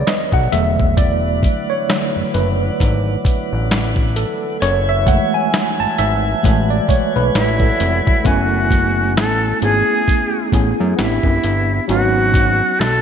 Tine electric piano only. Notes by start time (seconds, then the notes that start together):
Already playing: D#3 F#3 B3 B4 C#5 D5
0.07 D#5
0.33 F#5
0.51 D3 F#3 A3 E5
0.98 D5
1.70 C#5
1.88 D3 F#3 A3
2.34 B4
4.16 A4
4.62 C#5
4.89 E5
5.07 E3 G#3 A3 F#5
5.34 G#5
5.80 A5
5.99 E5
6.43 E3 G#3 A3
6.70 D5
6.89 C#5
7.16 B4
7.61 A4
8.24 A3 B3 C#4 E4 G#5
9.61 A3 B3 C#4 E4 G#4
9.70 G#4
10.52 A3 B3 C#4 E4 G#4
10.97 B3 C4 D4 E4 G4
11.88 F#3 A3 C#4 D#4 F#4
11.95 B3